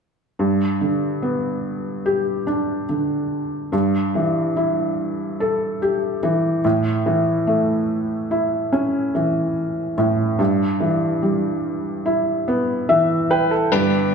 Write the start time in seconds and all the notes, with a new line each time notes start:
0.39 G2
0.81 D3
1.22 B3
2.06 G4
2.47 D4
2.89 D3
3.72 G2
4.15 E3
4.56 E4
5.40 A4
5.82 G4
6.23 E3
6.64 A2
7.06 E3
7.47 A3
8.31 E4
8.73 C#4
9.15 E3
9.98 A2
10.39 G2
10.80 E3
11.23 G3
12.06 E4
12.48 B3
12.89 E3 E5
13.31 B4 G5
13.51 A4
13.72 G2 D3 G3 B3 D4 G4 B4